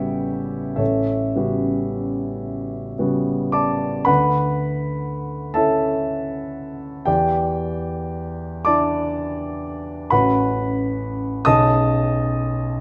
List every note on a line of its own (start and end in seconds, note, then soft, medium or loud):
0.00 0.82 C#3 soft
0.00 0.82 G3 soft
0.00 0.83 B3 soft
0.00 0.82 F#4 soft
0.00 0.75 G4 soft
0.00 0.75 C#5 soft
0.00 0.74 E5 medium
0.00 0.78 G5 medium
0.76 1.33 A1 soft
0.76 3.49 A4 soft
0.76 3.49 C#5 soft
0.76 3.53 E5 soft
1.35 2.94 C#3 soft
1.35 2.94 G3 soft
1.35 2.95 B3 soft
1.35 2.95 F#4 soft
2.98 4.03 C#3 soft
2.98 4.04 G3 soft
2.98 4.04 B3 soft
2.98 4.04 F#4 soft
3.52 4.03 D5 soft
3.52 4.04 A5 soft
3.52 4.07 D6 medium
4.05 7.02 D2 soft
4.05 5.52 B4 medium
4.05 5.52 F#5 medium
4.05 5.55 B5 medium
5.54 7.03 C#4 soft
5.54 7.03 E4 soft
5.54 7.02 A4 soft
5.54 7.02 E5 soft
5.54 7.05 A5 medium
7.05 10.08 E2 soft
7.05 8.62 G4 soft
7.05 8.62 D5 soft
7.05 8.65 G5 medium
8.65 10.08 D4 soft
8.65 10.08 E4 soft
8.65 9.61 D5 medium
8.65 9.61 A5 soft
8.65 9.64 D6 medium
10.10 11.43 A1 soft
10.10 11.43 C#4 soft
10.10 11.43 F#4 soft
10.10 11.43 B4 medium
10.10 11.43 F#5 medium
10.10 11.46 B5 medium
11.45 12.78 B1 soft
11.45 12.78 C#4 soft
11.45 12.78 G#4 soft
11.45 12.77 D#5 medium
11.45 12.77 A5 medium
11.45 12.81 D#6 medium